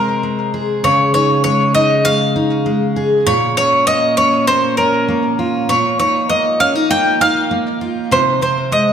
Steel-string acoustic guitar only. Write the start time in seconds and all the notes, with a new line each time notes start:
Already playing: C3 G#3 C4
0.23 G#3
0.54 G#4
0.84 C#3
1.15 D#4
1.45 G#3
1.75 D#4
2.05 G#3
2.36 D#4
2.66 G#3
2.96 G#4
3.27 A#2
3.57 C#4
3.87 A#3
4.18 C#4
4.48 A#3
4.78 C#4
5.08 A#3
5.39 F4
5.69 A#2
5.99 D#4
6.30 A#3
6.60 C#4
6.75 D#4
6.91 A#3
7.21 D#4
7.51 A#3
7.81 F4
8.11 C3
8.41 C4
8.72 G#3